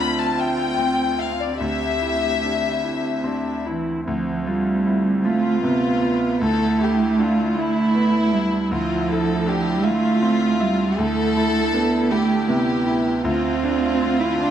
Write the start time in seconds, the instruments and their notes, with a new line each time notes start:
Already playing: grand piano D2 D4 E5, viola C4, cello F4
0.00 violin section B5
0.19 violin section A5
0.38 grand piano E5, violin section G5
0.78 grand piano C4
1.19 grand piano E5, violin section F5
1.41 violin section D5
1.60 grand piano D2, viola C4, cello G4, violin section E5
2.02 grand piano E4
2.44 grand piano D4
2.84 viola C4, grand piano E4
3.24 grand piano C4, viola D4
3.66 cello E3, grand piano E4, viola E4
4.07 grand piano D2, cello F3, viola C4
4.47 cello G3, grand piano F4
4.86 grand piano E4
5.25 cello A3, grand piano F4, violin section F4
5.63 grand piano C3, cello B3
6.02 grand piano F4
6.40 grand piano D2, cello A3, viola E4, violin section A4
6.79 grand piano E4, violin section G4
7.18 grand piano D4, violin section F4
7.56 cello A3, grand piano E4, violin section E4
7.95 grand piano B3
8.33 cello G3, grand piano E4
8.71 grand piano D2, cello F3, violin section F4
9.08 grand piano E4, violin section A4
9.46 grand piano D4, violin section G4
9.83 cello A3, violin section F4, grand piano E5
10.22 grand piano C4
10.60 cello G3, grand piano E5
10.98 grand piano D2, cello A3, viola E4, violin section A4
11.37 grand piano E4
11.73 cello B3, grand piano D4
12.10 cello A3, grand piano E4, violin section G4
12.48 grand piano C3, cello B3
12.86 grand piano E4
13.23 grand piano D2, cello C4, viola F4, violin section F4
13.63 grand piano D4
14.02 grand piano C4
14.20 cello E4
14.40 cello D4, grand piano D4